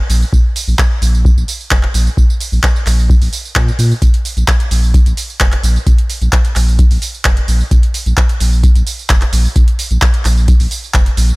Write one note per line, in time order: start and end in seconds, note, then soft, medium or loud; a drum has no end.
0.10 0.24 A#1 loud
0.10 open hi-hat loud
0.10 tambourine medium
0.22 tambourine soft
0.33 0.40 A#1 medium
0.33 kick loud
0.33 tambourine soft
0.56 open hi-hat loud
0.56 tambourine medium
0.68 0.75 A#1 medium
0.68 tambourine soft
0.79 kick medium
0.79 clap loud
0.79 tambourine soft
1.02 1.30 A#1 medium
1.02 open hi-hat medium
1.02 tambourine medium
1.15 tambourine soft
1.25 kick loud
1.25 tambourine soft
1.37 1.44 A#1 medium
1.37 tambourine soft
1.48 open hi-hat medium
1.48 tambourine medium
1.61 tambourine soft
1.71 1.86 F1 loud
1.71 kick medium
1.71 clap loud
1.71 tambourine soft
1.83 clap soft
1.94 2.09 A#1 loud
1.94 open hi-hat medium
1.94 tambourine medium
2.07 tambourine soft
2.17 2.25 A#1 loud
2.17 kick loud
2.17 tambourine soft
2.30 tambourine soft
2.40 open hi-hat loud
2.40 tambourine medium
2.52 2.59 A#1 medium
2.52 tambourine soft
2.63 kick medium
2.63 clap loud
2.63 tambourine soft
2.76 tambourine soft
2.86 3.14 A#1 medium
2.86 clap soft
2.86 open hi-hat loud
2.86 tambourine medium
2.99 tambourine soft
3.10 kick loud
3.10 tambourine soft
3.21 3.28 A#1 medium
3.21 open hi-hat medium
3.21 tambourine soft
3.33 open hi-hat loud
3.33 tambourine medium
3.45 tambourine soft
3.56 3.70 A#2 medium
3.56 kick medium
3.56 clap loud
3.56 tambourine soft
3.68 tambourine soft
3.79 3.93 A#2 medium
3.79 open hi-hat loud
3.79 tambourine medium
3.92 tambourine soft
4.02 4.09 A#1 medium
4.02 kick loud
4.02 closed hi-hat medium
4.02 tambourine soft
4.14 closed hi-hat medium
4.25 open hi-hat loud
4.25 tambourine medium
4.37 4.44 A#1 medium
4.37 closed hi-hat soft
4.37 tambourine soft
4.48 kick loud
4.48 clap loud
4.48 closed hi-hat medium
4.48 tambourine soft
4.60 closed hi-hat medium
4.71 4.99 A#1 medium
4.71 open hi-hat loud
4.71 tambourine medium
4.84 tambourine soft
4.94 kick loud
4.94 closed hi-hat medium
4.94 tambourine soft
5.06 5.13 A#1 medium
5.06 closed hi-hat soft
5.06 tambourine soft
5.17 open hi-hat loud
5.17 tambourine medium
5.30 tambourine soft
5.40 5.55 F1 medium
5.40 kick loud
5.40 clap loud
5.40 closed hi-hat medium
5.40 tambourine soft
5.52 clap soft
5.52 closed hi-hat medium
5.63 5.78 A#1 loud
5.63 open hi-hat loud
5.63 tambourine medium
5.76 tambourine soft
5.87 5.94 A#1 medium
5.87 kick loud
5.87 closed hi-hat medium
5.87 tambourine soft
5.98 closed hi-hat soft
6.10 open hi-hat loud
6.10 tambourine medium
6.22 6.28 A#1 medium
6.22 closed hi-hat soft
6.22 tambourine soft
6.33 kick loud
6.33 clap loud
6.33 closed hi-hat medium
6.33 tambourine soft
6.45 closed hi-hat medium
6.56 6.83 A#1 medium
6.56 clap soft
6.56 open hi-hat loud
6.56 tambourine medium
6.68 tambourine soft
6.79 kick loud
6.79 closed hi-hat medium
6.79 tambourine soft
6.91 6.98 A#1 medium
6.91 open hi-hat medium
6.91 tambourine soft
7.02 open hi-hat loud
7.02 tambourine medium
7.14 tambourine soft
7.25 7.39 F1 medium
7.25 kick loud
7.25 clap loud
7.25 closed hi-hat medium
7.25 tambourine soft
7.37 closed hi-hat medium
7.48 7.63 A#1 loud
7.48 open hi-hat loud
7.48 tambourine medium
7.61 tambourine soft
7.71 7.79 A#1 medium
7.71 kick loud
7.71 closed hi-hat medium
7.71 tambourine soft
7.83 closed hi-hat soft
7.94 open hi-hat loud
7.94 tambourine medium
8.06 8.13 A#1 medium
8.06 closed hi-hat soft
8.06 tambourine soft
8.17 kick loud
8.17 clap loud
8.17 closed hi-hat medium
8.17 tambourine soft
8.29 closed hi-hat soft
8.40 8.68 A#1 medium
8.40 open hi-hat loud
8.40 tambourine medium
8.53 tambourine soft
8.64 kick loud
8.64 closed hi-hat medium
8.64 tambourine soft
8.75 8.82 A#1 medium
8.75 closed hi-hat soft
8.75 tambourine soft
8.87 open hi-hat loud
8.87 tambourine medium
8.99 tambourine soft
9.10 9.24 F1 loud
9.10 kick loud
9.10 clap loud
9.10 closed hi-hat medium
9.10 tambourine soft
9.21 clap soft
9.21 closed hi-hat soft
9.33 9.47 A#1 loud
9.33 open hi-hat loud
9.33 tambourine medium
9.45 tambourine soft
9.56 9.63 A#1 medium
9.56 kick loud
9.56 closed hi-hat medium
9.56 tambourine soft
9.68 closed hi-hat soft
9.79 open hi-hat loud
9.79 tambourine medium
9.91 9.98 A#1 medium
9.91 closed hi-hat soft
9.91 tambourine soft
10.02 kick loud
10.02 clap loud
10.02 closed hi-hat medium
10.02 tambourine soft
10.14 closed hi-hat soft
10.25 10.53 A#1 medium
10.25 clap soft
10.25 open hi-hat loud
10.25 tambourine medium
10.38 tambourine soft
10.48 kick loud
10.48 closed hi-hat medium
10.48 tambourine soft
10.60 10.67 A#1 medium
10.60 open hi-hat medium
10.60 tambourine soft
10.71 open hi-hat loud
10.71 tambourine medium
10.84 tambourine soft
10.94 11.09 F1 loud
10.94 kick loud
10.94 clap loud
10.94 closed hi-hat medium
10.94 tambourine soft
11.06 closed hi-hat soft
11.17 11.32 A#1 loud
11.17 open hi-hat loud
11.17 tambourine medium
11.29 closed hi-hat soft
11.29 tambourine soft